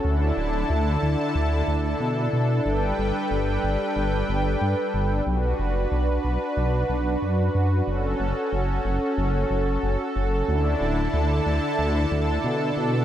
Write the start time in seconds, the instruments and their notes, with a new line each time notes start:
Already playing: analog synth pad A4
0.05 detuned saw bass D2, analog synth pad D3 D4 E4 A5
0.37 detuned saw bass D1
0.70 detuned saw bass D2
1.03 detuned saw bass D2
1.35 detuned saw bass D2
1.68 detuned saw bass D2
2.00 detuned saw bass B2
2.33 detuned saw bass B2
2.66 detuned saw bass G1, analog synth pad G3 B4 G5
2.98 detuned saw bass G1
3.31 detuned saw bass G1
3.64 detuned saw bass G1
3.96 detuned saw bass G1
4.29 detuned saw bass G1
4.61 detuned saw bass G2
4.94 detuned saw bass G1
5.27 detuned saw bass B1, analog synth pad D4 F#4 B4
5.59 detuned saw bass F#1
5.92 detuned saw bass B1
6.24 detuned saw bass B1
6.57 detuned saw bass B1
6.90 detuned saw bass B1
7.22 detuned saw bass F#2
7.55 detuned saw bass F#2
7.87 detuned saw bass F#1, analog synth pad C#4 A4
8.20 detuned saw bass F#1
8.53 detuned saw bass F#1
8.85 detuned saw bass F#1
9.18 detuned saw bass F#1
9.51 detuned saw bass F#1
9.83 detuned saw bass F#1
10.16 detuned saw bass F#1
10.48 detuned saw bass D2, analog synth pad D3 D4 E4 A5
10.81 detuned saw bass D1
11.14 detuned saw bass D2
11.46 detuned saw bass D2
11.79 detuned saw bass D2
12.12 detuned saw bass D2
12.44 detuned saw bass B2
12.77 detuned saw bass B2